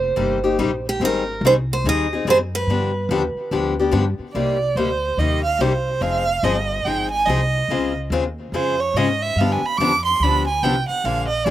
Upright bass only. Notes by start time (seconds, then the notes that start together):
Already playing: F1
0.17 G1
0.58 A#1
1.00 G#1
1.41 C2
1.84 D#2
2.25 F#2
2.67 G2
3.09 D#2
3.35 muted upright bass stroke
3.51 D2
3.92 G2
4.19 muted upright bass stroke
4.35 C2
4.75 D2
5.17 D#2
5.59 C2
6.01 F1
6.43 G1
6.85 G#1
7.27 C2
7.68 C#2
8.10 D#2
8.52 F2
8.94 G#2
9.36 G2
9.62 muted upright bass stroke
9.78 F2
10.20 D2
10.63 C2
10.89 muted upright bass stroke
11.04 A#1
11.46 G1